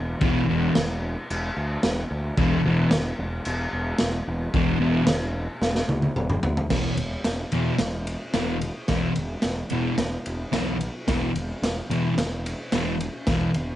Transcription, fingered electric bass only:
0.00 0.14 E1 loud
0.22 0.41 E1 medium
0.48 0.68 E1 medium
0.76 1.15 E1 medium
1.30 1.50 E1 loud
1.57 1.76 D2 medium
1.84 2.03 E1 medium
2.11 2.30 D2 loud
2.38 2.57 E1 medium
2.65 2.84 E1 medium
2.92 3.12 E1 medium
3.19 3.38 E1 medium
3.46 3.65 E1 loud
3.73 3.92 E1 medium
4.01 4.20 E1 medium
4.28 4.47 E1 medium
4.54 4.73 E1 loud
4.81 5.00 E1 medium
5.07 5.46 E1 loud
5.61 5.81 E1 loud
5.88 6.08 D2 medium
6.16 6.35 E1 medium
6.43 6.63 D2 medium
6.71 6.88 E1 medium
6.97 7.15 E1 medium
7.26 7.43 E1 medium
7.52 7.70 E2 medium
7.79 8.14 E1 medium
8.34 8.69 E1 medium
8.89 9.06 E1 medium
9.16 9.34 E1 medium
9.44 9.61 E1 medium
9.71 9.88 E1 medium
9.98 10.16 E1 loud
10.27 10.44 E1 medium
10.53 10.88 B1 medium
11.08 11.25 E1 medium
11.35 11.52 E1 medium
11.62 11.80 E1 medium
11.89 12.07 E2 medium
12.18 12.53 E1 medium
12.73 13.07 E1 medium
13.27 13.45 E1 medium
13.54 13.72 E1 medium

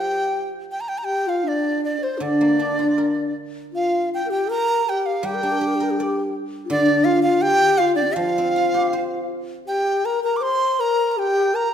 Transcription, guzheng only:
0.00 1.45 F3 medium
2.20 4.49 D3 medium
2.41 3.93 A#3 soft
2.59 4.12 D4 soft
2.79 4.31 F4 soft
2.98 4.50 A#4 soft
5.23 7.43 G3 medium
5.43 6.89 D4 soft
5.61 7.07 G4 soft
5.80 7.25 A#4 soft
6.00 7.45 D5 soft
6.70 8.92 D3 medium
8.16 10.42 F3 medium
8.38 9.88 C4 soft
8.56 10.06 F4 soft
8.74 10.25 G4 soft
8.93 10.43 C5 soft

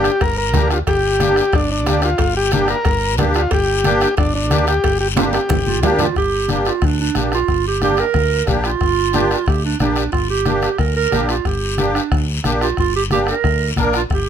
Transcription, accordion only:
0.00 0.10 A#3 medium
0.00 0.11 D4 medium
0.00 0.11 G4 medium
0.54 0.77 A#3 medium
0.54 0.77 D4 medium
0.54 0.78 G4 medium
1.20 1.43 A#3 medium
1.20 1.43 D4 medium
1.20 1.43 G4 medium
1.86 2.09 A#3 medium
1.86 2.09 D4 medium
1.86 2.10 G4 medium
2.52 2.75 A#3 medium
2.52 2.76 D4 medium
2.52 2.76 G4 medium
3.17 3.41 A#3 medium
3.17 3.42 D4 medium
3.17 3.42 G4 medium
3.85 4.08 A#3 medium
3.85 4.08 D4 medium
3.85 4.08 G4 loud
4.50 4.74 A#3 medium
4.50 4.74 D4 medium
4.50 4.74 G4 medium
5.16 5.40 A#3 medium
5.16 5.40 D4 medium
5.16 5.40 G4 medium
5.82 6.06 A#3 medium
5.82 6.06 D4 medium
5.82 6.06 G4 loud
6.49 6.72 A#3 medium
6.49 6.72 D4 medium
6.49 6.73 G4 medium
7.15 7.38 A#3 medium
7.15 7.39 D4 medium
7.15 7.38 G4 medium
7.82 8.05 A#3 medium
7.82 8.05 D4 medium
7.82 8.05 G4 medium
8.46 8.70 A#3 medium
8.46 8.70 D4 medium
8.46 8.71 G4 medium
9.13 9.36 A#3 medium
9.13 9.37 D4 medium
9.13 9.37 G4 medium
9.80 10.03 A#3 medium
9.80 10.03 D4 medium
9.80 10.04 G4 medium
10.46 10.69 A#3 medium
10.46 10.69 D4 medium
10.46 10.69 G4 medium
11.11 11.35 A#3 medium
11.11 11.35 D4 medium
11.11 11.35 G4 medium
11.78 12.01 A#3 medium
11.78 12.01 D4 medium
11.78 12.02 G4 medium
12.44 12.68 A#3 medium
12.44 12.68 D4 medium
12.44 12.68 G4 medium
13.12 13.35 A#3 medium
13.12 13.35 D4 medium
13.12 13.35 G4 medium
13.77 14.00 A#3 medium
13.77 14.01 D4 medium
13.77 14.01 A#4 medium

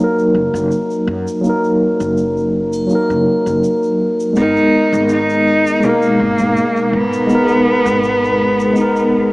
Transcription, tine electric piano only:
0.00 1.41 F#3 medium
0.00 1.43 A#3 medium
0.00 1.47 D#4 medium
0.00 0.04 A#4 loud
0.00 1.43 A#4 loud
1.41 2.85 F#3 medium
1.41 2.86 A#3 medium
1.47 2.88 D#4 medium
1.47 2.89 A#4 loud
2.87 4.31 F#3 medium
2.87 4.32 A#3 medium
2.92 4.34 D#4 medium
2.92 4.35 A#4 loud
4.33 5.77 G#3 medium
4.33 5.79 B3 medium
4.39 5.80 D#4 medium
4.39 5.81 A#4 loud
5.80 7.25 B2 medium
5.80 7.24 G#3 medium
5.86 7.27 D#4 medium
5.86 7.28 A#4 loud
7.27 8.70 G#3 medium
7.27 8.72 B3 medium
7.33 8.73 D#4 medium
7.33 8.75 A#4 loud
8.73 9.33 G#3 medium
8.73 9.33 B3 medium
8.79 9.33 D#4 medium
8.79 9.33 A#4 loud

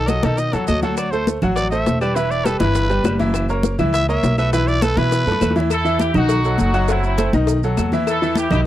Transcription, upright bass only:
0.00 0.19 B1 medium
0.24 0.52 B2 loud
0.53 0.67 E2 medium
0.68 1.37 D2 medium
1.43 1.84 A1 loud
1.87 2.56 E1 medium
2.61 3.02 G1 loud
3.05 3.74 F#1 medium
3.79 4.20 C#2 loud
4.23 4.92 B1 medium
4.97 5.25 B2 loud
5.26 5.40 F#2 medium
5.41 6.10 E2 loud
6.15 6.56 B1 loud
6.60 7.28 F#1 loud
7.33 7.74 B1 loud
7.78 8.46 E2 medium
8.51 8.66 B1 loud

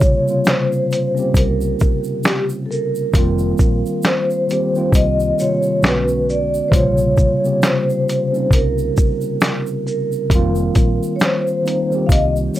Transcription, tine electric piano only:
0.00 3.16 C3 loud
0.00 0.26 C#3 loud
0.00 0.27 G3 medium
0.00 0.28 A#3 medium
0.00 0.30 F4 loud
0.26 0.81 C#3 medium
0.26 0.82 G3 medium
0.26 0.82 A#3 medium
0.26 0.83 C4 medium
0.30 0.84 F4 medium
1.15 2.27 G3 medium
1.15 2.27 A#3 medium
1.15 2.28 C4 medium
1.15 2.26 C#4 medium
1.19 2.28 G4 medium
3.14 4.00 D#3 medium
3.14 4.01 G3 medium
3.14 4.01 A#3 loud
3.14 4.02 C4 medium
3.18 4.02 F4 loud
4.48 4.65 D#3 medium
4.48 4.65 G3 medium
4.48 4.66 A#3 medium
4.48 4.66 C4 medium
4.52 4.67 G4 medium
4.73 5.16 D#3 medium
4.73 5.17 G3 medium
4.73 5.18 A#3 medium
4.73 5.18 C4 medium
4.78 5.19 F4 medium
5.37 5.84 C3 medium
5.37 5.82 D#3 medium
5.37 5.83 G3 medium
5.37 5.84 A#3 medium
5.42 5.85 F4 medium
5.82 6.57 D3 medium
5.82 6.58 G#3 medium
5.82 6.59 B3 medium
5.82 6.59 C#4 medium
5.87 6.60 F#4 loud
6.70 7.16 C3 medium
6.70 7.14 C#3 loud
6.70 7.15 G3 loud
6.70 7.16 A#3 medium
6.75 7.17 F4 loud
7.41 7.97 C#3 medium
7.41 7.98 G3 medium
7.41 7.99 A#3 medium
7.41 7.99 C4 medium
7.46 8.00 G4 medium
8.32 9.44 G3 medium
8.32 9.44 A#3 medium
8.32 9.45 C4 medium
8.32 9.43 C#4 medium
8.37 9.45 D#4 medium
10.30 11.17 D#3 loud
10.30 11.17 G3 medium
10.30 10.39 G#3 medium
10.30 11.18 C4 loud
10.35 11.21 A#3 loud
10.35 11.19 F4 loud
11.62 11.80 D#3 medium
11.62 11.81 G3 medium
11.62 11.81 A#3 medium
11.62 11.82 C4 medium
11.67 11.83 D#4 medium
11.90 12.33 D#3 medium
11.90 12.34 G3 medium
11.90 12.34 A#3 medium
11.90 12.35 C4 medium
11.95 12.36 G4 medium
12.54 12.60 D#3 medium
12.54 12.60 G3 medium

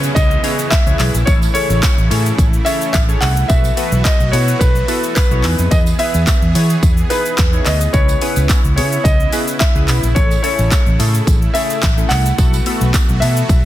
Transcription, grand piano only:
0.15 0.73 D#5 loud
0.70 1.28 E5 loud
1.26 1.32 C#5 loud
1.54 2.06 C#5 loud
2.65 2.91 E5 loud
2.93 2.99 E5 loud
3.21 3.50 F#5 loud
3.48 4.06 E5 loud
4.04 4.33 D#5 loud
4.32 4.61 C#5 loud
4.59 5.14 B4 loud
5.15 5.73 B4 loud
5.71 5.77 D#5 loud
5.99 7.14 E5 loud
7.10 7.68 B4 loud
7.65 7.94 D#5 medium
7.93 8.75 C#5 loud
8.76 9.05 C#5 medium
9.04 9.62 D#5 loud
9.60 10.17 E5 loud
10.15 10.41 C#5 loud
10.43 10.95 C#5 loud
11.54 12.12 E5 loud
12.09 13.24 F#5 loud
13.20 13.65 E5 loud

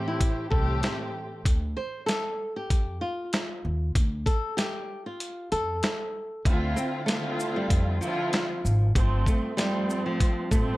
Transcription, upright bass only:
0.52 0.79 C2 medium
1.46 1.73 D2 loud
2.71 2.98 F2 medium
3.65 3.92 D#2 medium
3.96 4.23 D2 loud
5.52 5.79 F2 medium
6.46 6.73 D2 loud
7.71 7.98 F2 loud
8.65 8.92 G#1 loud
8.96 9.23 G1 loud
10.52 10.77 A1 medium

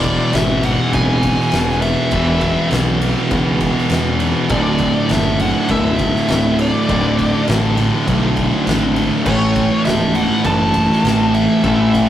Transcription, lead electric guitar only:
0.00 0.35 D5 medium
0.35 0.62 E5 medium
0.65 0.94 F#5 loud
0.94 1.79 G#5 loud
1.82 2.67 E5 medium
4.51 5.11 D5 loud
5.12 5.39 E5 loud
5.41 5.71 F#5 loud
5.71 6.55 E5 loud
6.60 7.45 D5 medium
9.26 9.85 C#5 medium
9.85 10.13 E5 loud
10.16 10.45 F#5 loud
10.46 11.38 A5 loud
11.34 12.09 E5 medium

